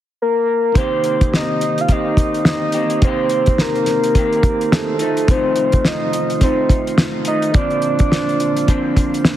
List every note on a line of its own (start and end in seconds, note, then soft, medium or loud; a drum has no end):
0.22 0.79 A#4 medium
0.72 1.88 C3 medium
0.72 4.95 A#3 medium
0.72 4.96 D#4 soft
0.72 4.97 G4 soft
0.72 kick medium
0.72 closed hi-hat medium
0.77 1.88 D#3 medium
0.77 1.88 A#3 medium
0.77 1.90 C4 medium
0.77 1.91 G4 medium
0.77 1.33 C5 loud
0.77 4.98 C5 medium
1.04 closed hi-hat medium
1.21 kick medium
1.21 closed hi-hat soft
1.34 1.82 D#5 loud
1.34 snare medium
1.61 closed hi-hat medium
1.78 1.94 F5 medium
1.78 closed hi-hat soft
1.88 3.03 D#3 soft
1.88 2.74 A#3 soft
1.88 2.76 C4 soft
1.88 2.73 G4 soft
1.88 2.47 D#5 loud
1.88 kick medium
1.88 closed hi-hat medium
2.17 kick medium
2.17 closed hi-hat medium
2.34 closed hi-hat soft
2.45 2.99 D#5 medium
2.45 snare loud
2.72 3.03 C4 soft
2.72 3.02 G4 soft
2.72 closed hi-hat medium
2.77 3.03 A#3 soft
2.90 closed hi-hat soft
3.02 4.15 C3 medium
3.02 4.16 D#3 medium
3.02 4.16 A#3 medium
3.02 3.62 C5 loud
3.02 kick loud
3.02 closed hi-hat medium
3.06 4.18 C4 medium
3.06 4.18 G4 medium
3.29 closed hi-hat medium
3.46 kick medium
3.46 closed hi-hat soft
3.58 4.76 A#4 loud
3.58 snare medium
3.75 closed hi-hat soft
3.86 snare soft
3.86 closed hi-hat medium
4.04 closed hi-hat soft
4.15 5.04 D#3 soft
4.15 5.01 A#3 soft
4.15 5.00 C4 medium
4.15 5.02 G4 medium
4.15 kick medium
4.15 closed hi-hat medium
4.33 closed hi-hat soft
4.43 kick medium
4.43 closed hi-hat medium
4.61 closed hi-hat soft
4.72 5.32 A4 medium
4.72 snare loud
4.97 7.50 A3 medium
4.97 7.51 D#4 medium
4.97 5.29 D#4 soft
4.97 7.51 F4 soft
4.97 closed hi-hat medium
5.02 5.30 D#3 soft
5.02 5.30 A3 soft
5.02 7.52 C5 medium
5.17 closed hi-hat soft
5.28 6.42 F2 medium
5.28 6.40 C3 medium
5.28 6.41 D#3 medium
5.28 5.88 C5 medium
5.28 kick loud
5.28 closed hi-hat medium
5.32 6.42 A3 medium
5.32 6.43 D#4 medium
5.56 closed hi-hat medium
5.72 kick medium
5.72 closed hi-hat soft
5.85 6.43 D#5 loud
5.85 snare medium
6.13 closed hi-hat medium
6.30 closed hi-hat soft
6.41 7.27 C3 soft
6.41 7.27 D#3 medium
6.41 7.27 A3 medium
6.41 7.26 D#4 medium
6.41 6.95 C5 medium
6.41 kick medium
6.41 closed hi-hat medium
6.69 kick medium
6.69 closed hi-hat medium
6.87 closed hi-hat soft
6.98 snare loud
7.25 7.56 A3 soft
7.25 7.55 D#4 soft
7.25 7.56 D#5 loud
7.25 closed hi-hat medium
7.30 7.56 D#3 soft
7.42 closed hi-hat soft
7.52 8.68 A#2 medium
7.52 8.66 D3 medium
7.52 9.37 A#3 medium
7.52 7.62 C4 soft
7.52 9.37 F4 medium
7.52 9.25 D5 loud
7.52 kick loud
7.52 closed hi-hat medium
7.57 8.68 F3 medium
7.57 8.69 C4 medium
7.57 8.70 D4 medium
7.57 9.37 D4 soft
7.57 9.37 C5 medium
7.70 closed hi-hat soft
7.82 closed hi-hat medium
7.99 kick medium
7.99 closed hi-hat medium
8.12 snare medium
8.29 closed hi-hat soft
8.40 closed hi-hat medium
8.56 closed hi-hat soft
8.67 9.37 D3 medium
8.67 9.37 F3 medium
8.67 9.37 C4 medium
8.67 9.37 D4 medium
8.67 kick medium
8.67 closed hi-hat medium
8.97 kick medium
8.97 closed hi-hat medium
9.14 closed hi-hat soft
9.25 snare loud